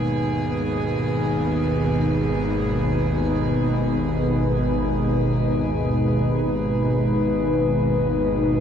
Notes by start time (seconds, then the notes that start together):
Already playing: G#1 D#2 B2 G#3 D#4 G#4 B4